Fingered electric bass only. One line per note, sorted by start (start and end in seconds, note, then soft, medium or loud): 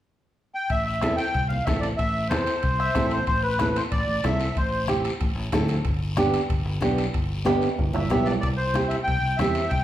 0.70 1.02 A1 medium
1.02 1.15 E2 medium
1.35 1.60 C2 medium
1.67 1.93 A1 medium
1.99 2.30 A1 medium
2.30 2.44 E2 medium
2.64 2.89 C2 medium
2.95 3.21 A1 medium
3.27 3.79 A1 medium
3.92 4.05 A1 medium
4.07 4.21 A1 medium
4.24 4.50 C2 medium
4.57 5.08 A1 medium
5.21 5.34 A1 medium
5.35 5.49 A1 loud
5.52 5.78 D2 medium
5.85 6.36 G1 loud
6.50 6.62 G1 medium
6.65 6.78 G1 medium
6.82 7.07 B1 medium
7.14 7.65 G1 medium
7.79 7.91 G1 medium
7.95 8.07 G1 medium
8.10 8.36 B1 medium
8.43 8.94 C2 medium
9.08 9.20 C2 medium
9.22 9.35 C2 medium
9.39 9.65 E2 medium
9.71 9.84 C2 medium